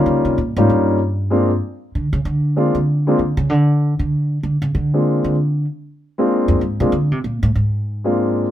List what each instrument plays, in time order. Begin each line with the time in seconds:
Already playing: grand piano G3 A#3 C#4 D#4 F4
0.06 upright bass C#3
0.25 upright bass C3
0.38 upright bass A#2
0.56 upright bass G#2, grand piano G3 A#3 C#4 D#4 F4
0.69 upright bass G2
1.30 grand piano G#3 A#3 C4 D4 F4
1.95 upright bass D3
2.13 upright bass C#3
2.25 upright bass D3
2.56 grand piano G#3 A#3 C4 D4 F4
2.75 upright bass D3
3.07 grand piano G#3 A#3 C4 D4 F4
3.19 upright bass D3
3.37 upright bass C#3
3.50 upright bass D3
3.99 upright bass D3
4.43 upright bass D3
4.62 upright bass C#3
4.75 upright bass D3
4.94 grand piano G#3 A#3 C4 D4 F4
5.24 upright bass D3
6.18 grand piano G#3 A#3 C4 D4 F4
6.48 upright bass F2
6.61 upright bass G#2
6.80 upright bass C3, grand piano G#3 A#3 C4 D4 F4
6.92 upright bass D3
7.12 upright bass C3
7.24 upright bass A#2
7.43 upright bass A2
7.55 upright bass G#2
8.04 grand piano G#3 A#3 C4 D4 F4